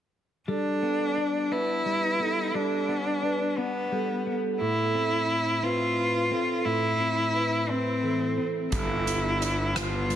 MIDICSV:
0, 0, Header, 1, 6, 480
1, 0, Start_track
1, 0, Tempo, 686499
1, 343, Time_signature, 6, 3, 24, 8
1, 7101, End_track
2, 0, Start_track
2, 0, Title_t, "Vibraphone"
2, 0, Program_c, 0, 11
2, 339, Note_on_c, 0, 69, 61
2, 821, Note_off_c, 0, 69, 0
2, 1063, Note_on_c, 0, 71, 61
2, 1543, Note_off_c, 0, 71, 0
2, 1545, Note_on_c, 0, 69, 54
2, 2024, Note_off_c, 0, 69, 0
2, 2267, Note_on_c, 0, 71, 54
2, 2745, Note_off_c, 0, 71, 0
2, 2745, Note_on_c, 0, 69, 50
2, 3212, Note_off_c, 0, 69, 0
2, 3220, Note_on_c, 0, 69, 65
2, 3702, Note_off_c, 0, 69, 0
2, 3940, Note_on_c, 0, 71, 59
2, 4419, Note_on_c, 0, 69, 56
2, 4422, Note_off_c, 0, 71, 0
2, 4901, Note_off_c, 0, 69, 0
2, 5135, Note_on_c, 0, 71, 50
2, 5615, Note_on_c, 0, 69, 53
2, 5618, Note_off_c, 0, 71, 0
2, 6088, Note_off_c, 0, 69, 0
2, 6097, Note_on_c, 0, 69, 67
2, 6578, Note_off_c, 0, 69, 0
2, 6813, Note_on_c, 0, 71, 53
2, 7101, Note_off_c, 0, 71, 0
2, 7101, End_track
3, 0, Start_track
3, 0, Title_t, "Cello"
3, 0, Program_c, 1, 42
3, 345, Note_on_c, 1, 62, 61
3, 1065, Note_on_c, 1, 64, 72
3, 1076, Note_off_c, 1, 62, 0
3, 1781, Note_on_c, 1, 62, 66
3, 1792, Note_off_c, 1, 64, 0
3, 2501, Note_on_c, 1, 59, 66
3, 2512, Note_off_c, 1, 62, 0
3, 3042, Note_off_c, 1, 59, 0
3, 3225, Note_on_c, 1, 64, 77
3, 3936, Note_on_c, 1, 65, 79
3, 3946, Note_off_c, 1, 64, 0
3, 4652, Note_on_c, 1, 64, 79
3, 4663, Note_off_c, 1, 65, 0
3, 5382, Note_on_c, 1, 60, 73
3, 5393, Note_off_c, 1, 64, 0
3, 5922, Note_off_c, 1, 60, 0
3, 6111, Note_on_c, 1, 64, 68
3, 6829, Note_on_c, 1, 65, 75
3, 6839, Note_off_c, 1, 64, 0
3, 7101, Note_off_c, 1, 65, 0
3, 7101, End_track
4, 0, Start_track
4, 0, Title_t, "Clean electric guitar"
4, 0, Program_c, 2, 27
4, 336, Note_on_c, 2, 55, 46
4, 577, Note_on_c, 2, 59, 45
4, 819, Note_on_c, 2, 62, 52
4, 1051, Note_off_c, 2, 59, 0
4, 1060, Note_on_c, 2, 59, 44
4, 1290, Note_off_c, 2, 55, 0
4, 1298, Note_on_c, 2, 55, 42
4, 1526, Note_off_c, 2, 59, 0
4, 1535, Note_on_c, 2, 59, 42
4, 1773, Note_off_c, 2, 55, 0
4, 1781, Note_on_c, 2, 55, 53
4, 2009, Note_off_c, 2, 59, 0
4, 2018, Note_on_c, 2, 59, 49
4, 2021, Note_off_c, 2, 62, 0
4, 2257, Note_on_c, 2, 62, 53
4, 2491, Note_off_c, 2, 59, 0
4, 2500, Note_on_c, 2, 59, 49
4, 2732, Note_off_c, 2, 55, 0
4, 2740, Note_on_c, 2, 55, 51
4, 2975, Note_off_c, 2, 59, 0
4, 2983, Note_on_c, 2, 59, 48
4, 3220, Note_off_c, 2, 62, 0
4, 3221, Note_on_c, 2, 45, 59
4, 3222, Note_off_c, 2, 55, 0
4, 3223, Note_off_c, 2, 59, 0
4, 3460, Note_on_c, 2, 60, 48
4, 3929, Note_off_c, 2, 60, 0
4, 3938, Note_on_c, 2, 60, 45
4, 4406, Note_off_c, 2, 60, 0
4, 4414, Note_on_c, 2, 60, 47
4, 4422, Note_off_c, 2, 45, 0
4, 4652, Note_on_c, 2, 45, 57
4, 4885, Note_off_c, 2, 60, 0
4, 4893, Note_on_c, 2, 60, 47
4, 5133, Note_on_c, 2, 64, 47
4, 5370, Note_off_c, 2, 60, 0
4, 5379, Note_on_c, 2, 60, 43
4, 5619, Note_on_c, 2, 52, 43
4, 5847, Note_off_c, 2, 60, 0
4, 5855, Note_on_c, 2, 60, 47
4, 5856, Note_off_c, 2, 45, 0
4, 6096, Note_off_c, 2, 52, 0
4, 6097, Note_off_c, 2, 64, 0
4, 6098, Note_off_c, 2, 60, 0
4, 6099, Note_on_c, 2, 55, 51
4, 6336, Note_on_c, 2, 59, 47
4, 6580, Note_on_c, 2, 62, 50
4, 6807, Note_off_c, 2, 59, 0
4, 6815, Note_on_c, 2, 59, 50
4, 7052, Note_off_c, 2, 55, 0
4, 7060, Note_on_c, 2, 55, 51
4, 7101, Note_off_c, 2, 55, 0
4, 7101, Note_off_c, 2, 59, 0
4, 7101, Note_off_c, 2, 62, 0
4, 7101, End_track
5, 0, Start_track
5, 0, Title_t, "Picked electric bass"
5, 0, Program_c, 3, 34
5, 6097, Note_on_c, 3, 31, 53
5, 7101, Note_off_c, 3, 31, 0
5, 7101, End_track
6, 0, Start_track
6, 0, Title_t, "Drums"
6, 6098, Note_on_c, 9, 42, 68
6, 6100, Note_on_c, 9, 36, 79
6, 6168, Note_off_c, 9, 42, 0
6, 6170, Note_off_c, 9, 36, 0
6, 6344, Note_on_c, 9, 42, 52
6, 6414, Note_off_c, 9, 42, 0
6, 6586, Note_on_c, 9, 42, 45
6, 6656, Note_off_c, 9, 42, 0
6, 6824, Note_on_c, 9, 37, 86
6, 6824, Note_on_c, 9, 42, 62
6, 6894, Note_off_c, 9, 37, 0
6, 6894, Note_off_c, 9, 42, 0
6, 7063, Note_on_c, 9, 42, 42
6, 7101, Note_off_c, 9, 42, 0
6, 7101, End_track
0, 0, End_of_file